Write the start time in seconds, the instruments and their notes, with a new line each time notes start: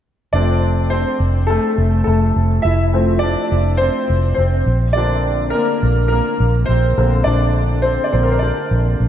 0.33 fingered electric bass F1, grand piano F3 A3 C4 D4 D5
0.90 grand piano C4 C5
1.20 fingered electric bass F1
1.47 grand piano A3 A4
1.78 fingered electric bass F1
2.04 fingered electric bass F1, grand piano A3 A4
2.36 fingered electric bass F1
2.62 fingered electric bass F1, grand piano E4 E5
2.93 grand piano F3 A3 C4
3.19 grand piano D5
3.23 grand piano D4
3.52 fingered electric bass F1
3.77 grand piano C5
3.82 grand piano C4
4.10 fingered electric bass F1
4.34 fingered electric bass F1, grand piano C5
4.39 grand piano C4
4.66 fingered electric bass A#1
4.93 grand piano D3 A#3 D5
4.97 grand piano C4 D4
5.50 grand piano A#4
5.55 grand piano A#3
5.83 fingered electric bass A#1
6.08 grand piano A#4
6.12 grand piano A#3
6.40 fingered electric bass A#1
6.66 fingered electric bass A#1, grand piano C5
6.70 grand piano C4
6.98 fingered electric bass A#1, grand piano D3 A#3 C4
7.24 fingered electric bass A#1, grand piano D4 D5
7.82 grand piano C4 C5
8.04 grand piano D5
8.12 fingered electric bass A#1, grand piano D3 A#3 C4 C5
8.23 grand piano A#4
8.32 grand piano C5
8.39 grand piano D4 D5
8.71 fingered electric bass A#1
9.00 fingered electric bass A#1